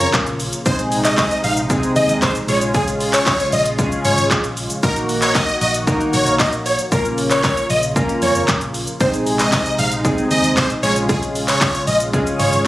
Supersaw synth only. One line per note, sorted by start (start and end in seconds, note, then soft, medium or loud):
0.66 0.76 C5 loud
1.05 1.15 D#5 medium
1.18 1.38 D#5 medium
1.44 1.54 F5 medium
1.96 2.16 D#5 medium
2.22 2.32 C5 medium
2.48 2.58 C#5 medium
2.74 2.84 G#4 loud
3.14 3.24 C#5 medium
3.27 3.47 C#5 medium
3.53 3.63 D#5 medium
4.05 4.25 C#5 medium
4.83 4.93 A#4 loud
5.22 5.32 C#5 medium
5.35 5.55 D#5 loud
5.61 5.71 D#5 medium
6.14 6.33 C#5 medium
6.40 6.50 D#5 medium
6.66 6.76 C#5 medium
6.92 7.02 A#4 loud
7.31 7.41 C#5 medium
7.44 7.64 C#5 medium
7.70 7.80 D#5 medium
8.22 8.42 C#5 medium
9.01 9.11 C5 loud
9.40 9.50 D#5 medium
9.53 9.73 D#5 medium
9.79 9.89 F5 medium
10.31 10.51 D#5 medium
10.57 10.67 C5 medium
10.83 10.93 C#5 medium
11.09 11.19 G#4 loud
11.48 11.58 C#5 medium
11.61 11.81 C#5 medium
11.87 11.97 D#5 medium
12.39 12.59 C#5 medium